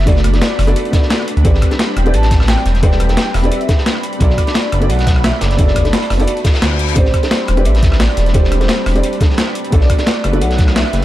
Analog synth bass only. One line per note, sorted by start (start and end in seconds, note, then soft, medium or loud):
0.00 0.40 F#1 loud
0.59 0.74 F#1 medium
1.37 1.44 D2 loud
1.45 1.61 A1 loud
1.97 2.15 E1 medium
2.14 2.56 A1 medium
2.66 3.16 E1 loud
3.35 3.50 E1 medium
4.21 4.36 B1 loud
4.72 4.91 F#1 medium
4.90 5.32 B1 medium
5.42 5.92 F#1 loud
6.10 6.26 F#1 medium
6.62 6.95 D2 medium
6.97 7.12 A1 loud
7.48 7.67 E1 medium
7.66 8.08 A1 medium
8.17 8.68 E1 loud
8.86 9.02 E1 medium
9.72 9.88 B1 loud
10.24 10.43 F#1 medium
10.42 10.84 B1 medium
10.93 11.05 F#1 loud